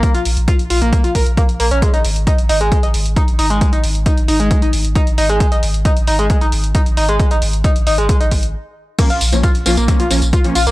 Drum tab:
CC |----------------|----------------|----------------|----------------|
HH |xxoxxxoxxxoxxxox|xxoxxxoxxxoxxxox|xxoxxxoxxxoxxxox|xxoxxxoxxxoxxxox|
TB |----------------|----------------|----------------|----------------|
BD |o---o---o-o-o---|o---o---o---o---|o---o---o---o---|o---o---o---o---|

CC |----------------|x---------------|
HH |xxoxxxoxxxox----|xxoxxxoxxxoxxxox|
TB |----------------|x-xxx-xxx-xxx-xx|
BD |o---o---o-o-----|o---o---o---o---|